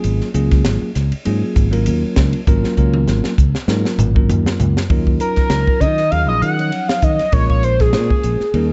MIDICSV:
0, 0, Header, 1, 6, 480
1, 0, Start_track
1, 0, Tempo, 607903
1, 36, Time_signature, 4, 2, 24, 8
1, 6890, End_track
2, 0, Start_track
2, 0, Title_t, "Analog synth lead"
2, 0, Program_c, 0, 81
2, 4110, Note_on_c, 0, 70, 90
2, 4582, Note_on_c, 0, 75, 92
2, 4593, Note_off_c, 0, 70, 0
2, 4824, Note_on_c, 0, 77, 98
2, 4836, Note_off_c, 0, 75, 0
2, 4958, Note_off_c, 0, 77, 0
2, 4963, Note_on_c, 0, 75, 91
2, 5063, Note_off_c, 0, 75, 0
2, 5069, Note_on_c, 0, 78, 108
2, 5431, Note_on_c, 0, 77, 92
2, 5443, Note_off_c, 0, 78, 0
2, 5552, Note_on_c, 0, 75, 83
2, 5563, Note_off_c, 0, 77, 0
2, 5785, Note_on_c, 0, 73, 96
2, 5797, Note_off_c, 0, 75, 0
2, 5916, Note_off_c, 0, 73, 0
2, 5921, Note_on_c, 0, 73, 82
2, 6031, Note_on_c, 0, 72, 84
2, 6042, Note_off_c, 0, 73, 0
2, 6161, Note_on_c, 0, 68, 75
2, 6173, Note_off_c, 0, 72, 0
2, 6885, Note_off_c, 0, 68, 0
2, 6890, End_track
3, 0, Start_track
3, 0, Title_t, "Tine electric piano"
3, 0, Program_c, 1, 4
3, 0, Note_on_c, 1, 54, 82
3, 0, Note_on_c, 1, 58, 71
3, 0, Note_on_c, 1, 61, 69
3, 0, Note_on_c, 1, 65, 70
3, 0, Note_on_c, 1, 68, 91
3, 219, Note_off_c, 1, 54, 0
3, 220, Note_off_c, 1, 58, 0
3, 222, Note_off_c, 1, 61, 0
3, 223, Note_off_c, 1, 68, 0
3, 224, Note_off_c, 1, 65, 0
3, 268, Note_on_c, 1, 54, 83
3, 269, Note_on_c, 1, 58, 77
3, 274, Note_on_c, 1, 61, 75
3, 275, Note_on_c, 1, 65, 73
3, 276, Note_on_c, 1, 68, 92
3, 704, Note_off_c, 1, 54, 0
3, 704, Note_off_c, 1, 58, 0
3, 707, Note_off_c, 1, 61, 0
3, 707, Note_off_c, 1, 65, 0
3, 707, Note_off_c, 1, 68, 0
3, 759, Note_on_c, 1, 68, 34
3, 821, Note_off_c, 1, 68, 0
3, 989, Note_on_c, 1, 54, 79
3, 990, Note_on_c, 1, 58, 79
3, 993, Note_on_c, 1, 61, 78
3, 995, Note_on_c, 1, 65, 72
3, 998, Note_on_c, 1, 68, 92
3, 1320, Note_off_c, 1, 54, 0
3, 1320, Note_off_c, 1, 58, 0
3, 1322, Note_off_c, 1, 61, 0
3, 1323, Note_off_c, 1, 65, 0
3, 1324, Note_off_c, 1, 68, 0
3, 1353, Note_on_c, 1, 54, 78
3, 1354, Note_on_c, 1, 58, 71
3, 1360, Note_on_c, 1, 61, 73
3, 1362, Note_on_c, 1, 65, 73
3, 1366, Note_on_c, 1, 70, 92
3, 1886, Note_off_c, 1, 54, 0
3, 1886, Note_off_c, 1, 58, 0
3, 1889, Note_off_c, 1, 61, 0
3, 1891, Note_off_c, 1, 65, 0
3, 1893, Note_off_c, 1, 70, 0
3, 1953, Note_on_c, 1, 54, 105
3, 1957, Note_on_c, 1, 58, 95
3, 1958, Note_on_c, 1, 61, 91
3, 1959, Note_on_c, 1, 65, 93
3, 1963, Note_on_c, 1, 70, 113
3, 2168, Note_off_c, 1, 54, 0
3, 2171, Note_off_c, 1, 58, 0
3, 2171, Note_off_c, 1, 61, 0
3, 2171, Note_off_c, 1, 65, 0
3, 2173, Note_off_c, 1, 70, 0
3, 2186, Note_on_c, 1, 58, 75
3, 2187, Note_on_c, 1, 54, 80
3, 2191, Note_on_c, 1, 61, 76
3, 2195, Note_on_c, 1, 65, 76
3, 2198, Note_on_c, 1, 70, 93
3, 2621, Note_off_c, 1, 54, 0
3, 2621, Note_off_c, 1, 58, 0
3, 2623, Note_off_c, 1, 61, 0
3, 2626, Note_off_c, 1, 65, 0
3, 2627, Note_off_c, 1, 70, 0
3, 2679, Note_on_c, 1, 68, 36
3, 2739, Note_off_c, 1, 68, 0
3, 2905, Note_on_c, 1, 54, 85
3, 2907, Note_on_c, 1, 58, 76
3, 2909, Note_on_c, 1, 61, 75
3, 2913, Note_on_c, 1, 65, 75
3, 2914, Note_on_c, 1, 70, 90
3, 3236, Note_off_c, 1, 54, 0
3, 3237, Note_off_c, 1, 58, 0
3, 3239, Note_off_c, 1, 61, 0
3, 3241, Note_off_c, 1, 65, 0
3, 3241, Note_off_c, 1, 70, 0
3, 3276, Note_on_c, 1, 54, 80
3, 3279, Note_on_c, 1, 58, 69
3, 3284, Note_on_c, 1, 61, 64
3, 3286, Note_on_c, 1, 65, 69
3, 3288, Note_on_c, 1, 70, 84
3, 3807, Note_off_c, 1, 54, 0
3, 3809, Note_off_c, 1, 58, 0
3, 3811, Note_off_c, 1, 61, 0
3, 3812, Note_off_c, 1, 65, 0
3, 3813, Note_off_c, 1, 70, 0
3, 3867, Note_on_c, 1, 54, 94
3, 3872, Note_on_c, 1, 61, 80
3, 3872, Note_on_c, 1, 63, 90
3, 3874, Note_on_c, 1, 65, 89
3, 3879, Note_on_c, 1, 70, 95
3, 4733, Note_off_c, 1, 54, 0
3, 4736, Note_off_c, 1, 61, 0
3, 4736, Note_off_c, 1, 63, 0
3, 4737, Note_off_c, 1, 65, 0
3, 4740, Note_off_c, 1, 70, 0
3, 4824, Note_on_c, 1, 61, 64
3, 4826, Note_on_c, 1, 54, 66
3, 4827, Note_on_c, 1, 63, 57
3, 4831, Note_on_c, 1, 65, 59
3, 4834, Note_on_c, 1, 68, 71
3, 4946, Note_off_c, 1, 61, 0
3, 4947, Note_off_c, 1, 54, 0
3, 4948, Note_off_c, 1, 63, 0
3, 4950, Note_off_c, 1, 65, 0
3, 4951, Note_off_c, 1, 68, 0
3, 4956, Note_on_c, 1, 54, 60
3, 4958, Note_on_c, 1, 61, 54
3, 4960, Note_on_c, 1, 65, 52
3, 4962, Note_on_c, 1, 63, 55
3, 4962, Note_on_c, 1, 68, 68
3, 5171, Note_off_c, 1, 54, 0
3, 5172, Note_off_c, 1, 61, 0
3, 5173, Note_off_c, 1, 63, 0
3, 5173, Note_off_c, 1, 65, 0
3, 5174, Note_off_c, 1, 68, 0
3, 5197, Note_on_c, 1, 54, 56
3, 5198, Note_on_c, 1, 63, 51
3, 5201, Note_on_c, 1, 53, 56
3, 5201, Note_on_c, 1, 61, 54
3, 5207, Note_on_c, 1, 73, 65
3, 5729, Note_off_c, 1, 54, 0
3, 5729, Note_off_c, 1, 63, 0
3, 5731, Note_off_c, 1, 53, 0
3, 5731, Note_off_c, 1, 61, 0
3, 5734, Note_off_c, 1, 73, 0
3, 5779, Note_on_c, 1, 56, 82
3, 5789, Note_on_c, 1, 58, 72
3, 5789, Note_on_c, 1, 61, 76
3, 5789, Note_on_c, 1, 70, 91
3, 5791, Note_on_c, 1, 65, 74
3, 6652, Note_off_c, 1, 56, 0
3, 6657, Note_off_c, 1, 58, 0
3, 6657, Note_off_c, 1, 61, 0
3, 6657, Note_off_c, 1, 70, 0
3, 6658, Note_off_c, 1, 65, 0
3, 6743, Note_on_c, 1, 55, 81
3, 6745, Note_on_c, 1, 58, 74
3, 6750, Note_on_c, 1, 61, 72
3, 6753, Note_on_c, 1, 63, 72
3, 6754, Note_on_c, 1, 70, 87
3, 6867, Note_off_c, 1, 55, 0
3, 6868, Note_off_c, 1, 58, 0
3, 6871, Note_off_c, 1, 61, 0
3, 6872, Note_off_c, 1, 63, 0
3, 6873, Note_off_c, 1, 70, 0
3, 6890, End_track
4, 0, Start_track
4, 0, Title_t, "Fingered electric bass"
4, 0, Program_c, 2, 33
4, 36, Note_on_c, 2, 32, 90
4, 159, Note_off_c, 2, 32, 0
4, 272, Note_on_c, 2, 37, 82
4, 494, Note_off_c, 2, 37, 0
4, 518, Note_on_c, 2, 32, 92
4, 639, Note_off_c, 2, 32, 0
4, 756, Note_on_c, 2, 37, 84
4, 878, Note_off_c, 2, 37, 0
4, 1001, Note_on_c, 2, 44, 99
4, 1120, Note_off_c, 2, 44, 0
4, 1233, Note_on_c, 2, 32, 84
4, 1482, Note_on_c, 2, 39, 84
4, 1493, Note_off_c, 2, 32, 0
4, 1601, Note_off_c, 2, 39, 0
4, 1712, Note_on_c, 2, 37, 87
4, 1835, Note_off_c, 2, 37, 0
4, 1956, Note_on_c, 2, 32, 89
4, 2077, Note_off_c, 2, 32, 0
4, 2194, Note_on_c, 2, 37, 85
4, 2414, Note_off_c, 2, 37, 0
4, 2428, Note_on_c, 2, 32, 90
4, 2552, Note_off_c, 2, 32, 0
4, 2670, Note_on_c, 2, 37, 81
4, 2793, Note_off_c, 2, 37, 0
4, 2905, Note_on_c, 2, 44, 97
4, 3031, Note_off_c, 2, 44, 0
4, 3143, Note_on_c, 2, 32, 89
4, 3391, Note_on_c, 2, 39, 83
4, 3402, Note_off_c, 2, 32, 0
4, 3513, Note_off_c, 2, 39, 0
4, 3637, Note_on_c, 2, 37, 83
4, 3757, Note_off_c, 2, 37, 0
4, 3867, Note_on_c, 2, 39, 83
4, 4090, Note_off_c, 2, 39, 0
4, 4343, Note_on_c, 2, 37, 79
4, 4469, Note_off_c, 2, 37, 0
4, 4586, Note_on_c, 2, 51, 77
4, 4810, Note_off_c, 2, 51, 0
4, 4834, Note_on_c, 2, 39, 83
4, 4964, Note_off_c, 2, 39, 0
4, 4964, Note_on_c, 2, 34, 78
4, 5063, Note_off_c, 2, 34, 0
4, 5070, Note_on_c, 2, 51, 77
4, 5292, Note_off_c, 2, 51, 0
4, 5547, Note_on_c, 2, 51, 73
4, 5672, Note_off_c, 2, 51, 0
4, 5787, Note_on_c, 2, 34, 88
4, 6259, Note_on_c, 2, 46, 86
4, 6271, Note_off_c, 2, 34, 0
4, 6389, Note_off_c, 2, 46, 0
4, 6506, Note_on_c, 2, 34, 72
4, 6633, Note_off_c, 2, 34, 0
4, 6741, Note_on_c, 2, 39, 96
4, 6870, Note_off_c, 2, 39, 0
4, 6890, End_track
5, 0, Start_track
5, 0, Title_t, "Muted fingered electric bass strokes"
5, 888, Note_on_c, 9, 29, 34
5, 967, Note_off_c, 9, 29, 0
5, 1617, Note_on_c, 9, 29, 36
5, 1696, Note_off_c, 9, 29, 0
5, 2568, Note_on_c, 9, 29, 37
5, 2647, Note_off_c, 9, 29, 0
5, 2802, Note_on_c, 9, 29, 34
5, 2881, Note_off_c, 9, 29, 0
5, 3525, Note_on_c, 9, 29, 36
5, 3604, Note_off_c, 9, 29, 0
5, 4244, Note_on_c, 9, 29, 30
5, 4323, Note_off_c, 9, 29, 0
5, 4483, Note_on_c, 9, 29, 34
5, 4562, Note_off_c, 9, 29, 0
5, 5687, Note_on_c, 9, 29, 33
5, 5765, Note_off_c, 9, 29, 0
5, 6400, Note_on_c, 9, 29, 33
5, 6479, Note_off_c, 9, 29, 0
5, 6890, End_track
6, 0, Start_track
6, 0, Title_t, "Drums"
6, 29, Note_on_c, 9, 44, 80
6, 29, Note_on_c, 9, 51, 81
6, 108, Note_off_c, 9, 44, 0
6, 108, Note_off_c, 9, 51, 0
6, 165, Note_on_c, 9, 38, 29
6, 244, Note_off_c, 9, 38, 0
6, 271, Note_on_c, 9, 44, 83
6, 271, Note_on_c, 9, 51, 62
6, 350, Note_off_c, 9, 44, 0
6, 350, Note_off_c, 9, 51, 0
6, 405, Note_on_c, 9, 51, 61
6, 406, Note_on_c, 9, 38, 30
6, 407, Note_on_c, 9, 36, 83
6, 484, Note_off_c, 9, 51, 0
6, 485, Note_off_c, 9, 38, 0
6, 486, Note_off_c, 9, 36, 0
6, 510, Note_on_c, 9, 44, 82
6, 510, Note_on_c, 9, 51, 78
6, 511, Note_on_c, 9, 38, 112
6, 589, Note_off_c, 9, 44, 0
6, 589, Note_off_c, 9, 51, 0
6, 590, Note_off_c, 9, 38, 0
6, 752, Note_on_c, 9, 44, 90
6, 752, Note_on_c, 9, 51, 64
6, 753, Note_on_c, 9, 38, 33
6, 831, Note_off_c, 9, 44, 0
6, 831, Note_off_c, 9, 51, 0
6, 832, Note_off_c, 9, 38, 0
6, 883, Note_on_c, 9, 51, 63
6, 962, Note_off_c, 9, 51, 0
6, 990, Note_on_c, 9, 44, 78
6, 990, Note_on_c, 9, 51, 84
6, 1069, Note_off_c, 9, 44, 0
6, 1069, Note_off_c, 9, 51, 0
6, 1230, Note_on_c, 9, 44, 81
6, 1230, Note_on_c, 9, 51, 64
6, 1233, Note_on_c, 9, 36, 72
6, 1309, Note_off_c, 9, 44, 0
6, 1309, Note_off_c, 9, 51, 0
6, 1312, Note_off_c, 9, 36, 0
6, 1363, Note_on_c, 9, 51, 69
6, 1442, Note_off_c, 9, 51, 0
6, 1468, Note_on_c, 9, 44, 86
6, 1468, Note_on_c, 9, 51, 89
6, 1547, Note_off_c, 9, 44, 0
6, 1547, Note_off_c, 9, 51, 0
6, 1707, Note_on_c, 9, 44, 86
6, 1707, Note_on_c, 9, 51, 61
6, 1708, Note_on_c, 9, 38, 112
6, 1711, Note_on_c, 9, 36, 70
6, 1786, Note_off_c, 9, 44, 0
6, 1786, Note_off_c, 9, 51, 0
6, 1787, Note_off_c, 9, 38, 0
6, 1790, Note_off_c, 9, 36, 0
6, 1838, Note_on_c, 9, 51, 63
6, 1917, Note_off_c, 9, 51, 0
6, 1950, Note_on_c, 9, 44, 83
6, 1953, Note_on_c, 9, 36, 103
6, 2029, Note_off_c, 9, 44, 0
6, 2032, Note_off_c, 9, 36, 0
6, 2087, Note_on_c, 9, 38, 51
6, 2166, Note_off_c, 9, 38, 0
6, 2188, Note_on_c, 9, 44, 85
6, 2191, Note_on_c, 9, 36, 62
6, 2267, Note_off_c, 9, 44, 0
6, 2270, Note_off_c, 9, 36, 0
6, 2317, Note_on_c, 9, 48, 62
6, 2396, Note_off_c, 9, 48, 0
6, 2428, Note_on_c, 9, 38, 66
6, 2428, Note_on_c, 9, 44, 84
6, 2507, Note_off_c, 9, 38, 0
6, 2507, Note_off_c, 9, 44, 0
6, 2558, Note_on_c, 9, 38, 63
6, 2637, Note_off_c, 9, 38, 0
6, 2669, Note_on_c, 9, 44, 83
6, 2670, Note_on_c, 9, 36, 79
6, 2748, Note_off_c, 9, 44, 0
6, 2749, Note_off_c, 9, 36, 0
6, 2802, Note_on_c, 9, 38, 65
6, 2881, Note_off_c, 9, 38, 0
6, 2906, Note_on_c, 9, 44, 81
6, 2907, Note_on_c, 9, 38, 77
6, 2985, Note_off_c, 9, 44, 0
6, 2986, Note_off_c, 9, 38, 0
6, 3044, Note_on_c, 9, 38, 65
6, 3123, Note_off_c, 9, 38, 0
6, 3148, Note_on_c, 9, 44, 82
6, 3148, Note_on_c, 9, 45, 80
6, 3227, Note_off_c, 9, 44, 0
6, 3227, Note_off_c, 9, 45, 0
6, 3284, Note_on_c, 9, 36, 76
6, 3363, Note_off_c, 9, 36, 0
6, 3391, Note_on_c, 9, 43, 92
6, 3391, Note_on_c, 9, 44, 83
6, 3470, Note_off_c, 9, 43, 0
6, 3470, Note_off_c, 9, 44, 0
6, 3525, Note_on_c, 9, 38, 83
6, 3603, Note_off_c, 9, 38, 0
6, 3630, Note_on_c, 9, 43, 93
6, 3630, Note_on_c, 9, 44, 85
6, 3709, Note_off_c, 9, 43, 0
6, 3709, Note_off_c, 9, 44, 0
6, 3767, Note_on_c, 9, 38, 79
6, 3846, Note_off_c, 9, 38, 0
6, 3868, Note_on_c, 9, 51, 72
6, 3869, Note_on_c, 9, 36, 94
6, 3947, Note_off_c, 9, 51, 0
6, 3948, Note_off_c, 9, 36, 0
6, 4001, Note_on_c, 9, 36, 70
6, 4080, Note_off_c, 9, 36, 0
6, 4105, Note_on_c, 9, 44, 75
6, 4105, Note_on_c, 9, 51, 56
6, 4184, Note_off_c, 9, 44, 0
6, 4184, Note_off_c, 9, 51, 0
6, 4234, Note_on_c, 9, 51, 56
6, 4235, Note_on_c, 9, 38, 28
6, 4241, Note_on_c, 9, 36, 68
6, 4313, Note_off_c, 9, 51, 0
6, 4314, Note_off_c, 9, 38, 0
6, 4320, Note_off_c, 9, 36, 0
6, 4340, Note_on_c, 9, 51, 75
6, 4341, Note_on_c, 9, 38, 97
6, 4419, Note_off_c, 9, 51, 0
6, 4420, Note_off_c, 9, 38, 0
6, 4480, Note_on_c, 9, 36, 69
6, 4559, Note_off_c, 9, 36, 0
6, 4588, Note_on_c, 9, 36, 63
6, 4588, Note_on_c, 9, 44, 76
6, 4588, Note_on_c, 9, 51, 58
6, 4667, Note_off_c, 9, 36, 0
6, 4667, Note_off_c, 9, 44, 0
6, 4667, Note_off_c, 9, 51, 0
6, 4722, Note_on_c, 9, 38, 26
6, 4722, Note_on_c, 9, 51, 54
6, 4801, Note_off_c, 9, 38, 0
6, 4801, Note_off_c, 9, 51, 0
6, 4830, Note_on_c, 9, 51, 72
6, 4909, Note_off_c, 9, 51, 0
6, 5071, Note_on_c, 9, 44, 76
6, 5071, Note_on_c, 9, 51, 57
6, 5150, Note_off_c, 9, 44, 0
6, 5150, Note_off_c, 9, 51, 0
6, 5203, Note_on_c, 9, 51, 56
6, 5282, Note_off_c, 9, 51, 0
6, 5308, Note_on_c, 9, 51, 80
6, 5386, Note_off_c, 9, 51, 0
6, 5444, Note_on_c, 9, 38, 103
6, 5523, Note_off_c, 9, 38, 0
6, 5543, Note_on_c, 9, 44, 76
6, 5543, Note_on_c, 9, 51, 55
6, 5547, Note_on_c, 9, 36, 78
6, 5622, Note_off_c, 9, 44, 0
6, 5622, Note_off_c, 9, 51, 0
6, 5626, Note_off_c, 9, 36, 0
6, 5679, Note_on_c, 9, 51, 58
6, 5680, Note_on_c, 9, 38, 27
6, 5758, Note_off_c, 9, 51, 0
6, 5759, Note_off_c, 9, 38, 0
6, 5781, Note_on_c, 9, 51, 78
6, 5786, Note_on_c, 9, 36, 102
6, 5860, Note_off_c, 9, 51, 0
6, 5865, Note_off_c, 9, 36, 0
6, 5920, Note_on_c, 9, 36, 75
6, 5999, Note_off_c, 9, 36, 0
6, 6024, Note_on_c, 9, 44, 75
6, 6024, Note_on_c, 9, 51, 55
6, 6103, Note_off_c, 9, 44, 0
6, 6103, Note_off_c, 9, 51, 0
6, 6157, Note_on_c, 9, 38, 29
6, 6157, Note_on_c, 9, 51, 55
6, 6159, Note_on_c, 9, 36, 70
6, 6236, Note_off_c, 9, 38, 0
6, 6236, Note_off_c, 9, 51, 0
6, 6238, Note_off_c, 9, 36, 0
6, 6261, Note_on_c, 9, 51, 74
6, 6262, Note_on_c, 9, 38, 100
6, 6340, Note_off_c, 9, 38, 0
6, 6340, Note_off_c, 9, 51, 0
6, 6399, Note_on_c, 9, 36, 72
6, 6478, Note_off_c, 9, 36, 0
6, 6501, Note_on_c, 9, 44, 74
6, 6501, Note_on_c, 9, 51, 52
6, 6580, Note_off_c, 9, 44, 0
6, 6580, Note_off_c, 9, 51, 0
6, 6634, Note_on_c, 9, 38, 29
6, 6713, Note_off_c, 9, 38, 0
6, 6741, Note_on_c, 9, 51, 71
6, 6820, Note_off_c, 9, 51, 0
6, 6890, End_track
0, 0, End_of_file